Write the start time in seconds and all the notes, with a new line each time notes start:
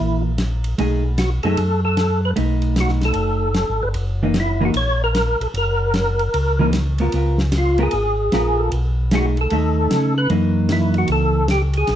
Already playing: E3 A#3 E4
0.00 A#1
0.38 snare, hi-hat pedal, ride
0.64 ride
0.78 B1 A3 D#4 G#4, ride
1.18 F#4, snare, hi-hat pedal, ride
1.43 F#2 A3 D#4 G#4 A4, ride
1.57 F#2, ride
1.85 A4
1.97 snare, hi-hat pedal, ride
2.25 B4
2.36 B1 A3 D#4, ride
2.62 ride
2.76 snare, hi-hat pedal, ride
2.80 F#4
2.88 snare
3.01 A4, snare, ride
3.14 F#1, ride
3.54 snare, hi-hat pedal, ride
3.69 G#1
3.83 G1 B4
3.94 F#1, ride
4.23 E3 A#3 D#4
4.34 snare, hi-hat pedal, ride
4.40 E4
4.61 E3 A#3 D#4
4.65 F#4
4.74 A#1 C#5, ride
5.04 A#4
5.15 snare, hi-hat pedal, ride
5.40 A#1 A4, ride
5.54 F#1 A#4, ride
5.94 snare, hi-hat pedal, ride
6.19 ride
6.34 C#2, ride
6.59 E3 A#3 D#4
6.73 snare, hi-hat pedal, ride
6.98 B3 F4 A#4, ride
7.12 C#2 B3 F4 A#4, ride
7.38 snare
7.52 snare, hi-hat pedal, ride
7.58 F4
7.78 B3 F4 A#4, ride
7.83 G#4
7.91 G#1, ride
8.32 A#1 B3 F4 A#4, snare, hi-hat pedal, ride
8.58 A4
8.72 B1, ride
9.11 A3 D#4 G#4, snare, hi-hat pedal, ride
9.15 F#4
9.37 A4, ride
9.50 D#2 A3 D#4, ride
9.91 C#3, snare, hi-hat pedal, ride
10.18 B4
10.30 F#2 E3 A#3 D#4, ride
10.69 E4, snare, hi-hat pedal, ride
10.94 ride
10.98 F#4
11.08 C#2, ride
11.12 A4
11.48 G4, snare, hi-hat pedal, ride
11.73 G#4, ride
11.87 A#1, snare, ride